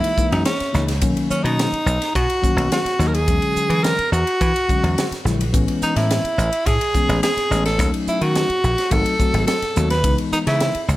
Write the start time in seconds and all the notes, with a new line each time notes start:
Already playing: E3 G#3 A#3 D#4 E4
0.04 ride
0.17 E3 G#3 A#3 D#4, muted slap bass stroke, kick, hi-hat pedal
0.32 F#2 D#4, ride
0.45 C#4, snare, hi-hat pedal, ride
0.60 muted slap bass stroke, snare, ride
0.73 C#2 E3 G#3 A#3 D#4, snare, hi-hat pedal
0.88 snare, ride
1.01 B1 D#3 F#3 A#3 C#4, kick, hi-hat pedal, ride
1.17 ride
1.30 C#4, muted slap bass stroke, hi-hat pedal
1.44 B2 D#4, ride
1.59 snare, hi-hat pedal, ride
1.72 muted slap bass stroke, ride
1.86 B1, hi-hat pedal
2.02 snare, ride
2.15 B2 F#4, kick, hi-hat pedal, ride
2.30 ride
2.42 D#3 F#3 A#3 C#4, muted slap bass stroke, kick, hi-hat pedal
2.56 B1, ride
2.72 F#4, snare, hi-hat pedal, ride
2.85 muted slap bass stroke, snare, ride
2.99 D#2 D#3 F#3 A#3 D#4, snare, hi-hat pedal
3.07 A#4
3.14 G#4, ride
3.28 E2 D3 F#3 G#3 C#4, kick, hi-hat pedal, ride
3.42 ride
3.56 muted slap bass stroke, hi-hat pedal
3.70 E3, ride
3.83 A#4, snare, hi-hat pedal, ride
3.99 muted slap bass stroke, ride
4.12 E2 F#4, hi-hat pedal
4.27 ride
4.41 E3, kick, hi-hat pedal, ride
4.56 ride
4.69 D3 F#3 G#3 C#4, muted slap bass stroke, kick, hi-hat pedal
4.83 E2, ride
4.98 snare, hi-hat pedal, ride
5.11 muted slap bass stroke, snare, ride
5.25 A#1 D3 F#3 G#3 E4, snare, hi-hat pedal
5.41 ride
5.53 A1 E3 G#3 B3 C#4, kick, hi-hat pedal, ride
5.68 ride
5.82 D#4, muted slap bass stroke, hi-hat pedal
5.96 A2 E4, snare, ride
6.11 snare, hi-hat pedal, ride
6.24 muted slap bass stroke, ride
6.38 A1, hi-hat pedal
6.53 ride
6.66 A2 G#4, kick, hi-hat pedal, ride
6.81 ride
6.94 E3 G#3 B3 C#4, muted slap bass stroke, kick, hi-hat pedal
7.09 A1, ride
7.23 G#4, snare, hi-hat pedal, ride
7.37 muted slap bass stroke, snare, ride
7.50 A1 E3 G#3 B3 C#4, snare, hi-hat pedal
7.66 A4, snare, ride
7.78 D#2 F#3 A3 C#4 D#4, kick, hi-hat pedal, ride
7.94 ride
8.07 E4, muted slap bass stroke, hi-hat pedal
8.21 D#3 F#4, ride
8.35 snare, hi-hat pedal, ride
8.49 muted slap bass stroke, ride
8.64 A#1, hi-hat pedal
8.78 snare, ride
8.91 G#1 F#3 A3 C4 D#4 A4, kick, hi-hat pedal, ride
9.06 ride
9.19 F#3 A3 C4 F#4, muted slap bass stroke, kick, hi-hat pedal
9.34 G#1, ride
9.47 A4, snare, hi-hat pedal, ride
9.62 muted slap bass stroke, snare, ride
9.76 D#2 F#3 A3 C4 F#4, hi-hat pedal
9.90 B4, snare, ride
10.04 C#2 E3 G#3 B3 D#4, kick, hi-hat pedal, ride
10.18 ride
10.32 D#4, muted slap bass stroke, hi-hat pedal
10.47 C#3 E4, snare, ride
10.60 snare, hi-hat pedal, ride
10.75 muted slap bass stroke, ride
10.88 C#2, hi-hat pedal